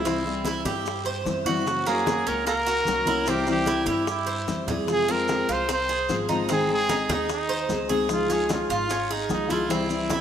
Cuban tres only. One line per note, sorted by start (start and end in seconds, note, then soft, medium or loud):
0.05 0.44 C4 medium
0.45 0.65 E4 medium
0.65 1.05 G4 medium
1.06 1.45 C5 medium
1.46 1.85 F#4 medium
1.86 2.26 A#3 medium
2.27 2.46 C#4 medium
2.47 2.66 A#3 medium
2.66 3.06 F#4 medium
3.07 3.27 E4 medium
3.27 3.66 C4 medium
3.67 3.86 E4 medium
3.87 4.26 G4 medium
4.27 4.66 C5 medium
4.68 5.07 G#4 medium
5.08 5.47 C4 medium
5.49 5.68 F4 medium
5.69 5.88 C4 medium
5.89 6.28 G#4 medium
6.29 6.48 D#4 medium
6.49 6.88 C4 medium
6.89 7.09 D#4 medium
7.09 7.48 G#4 medium
7.49 7.88 C5 medium
7.89 8.28 G#4 medium
8.30 8.69 C#4 medium
8.70 8.89 F4 medium
8.91 9.10 C#4 medium
9.11 9.49 G#4 medium
9.50 9.70 E4 medium
9.70 10.09 C4 medium
10.11 10.21 E4 medium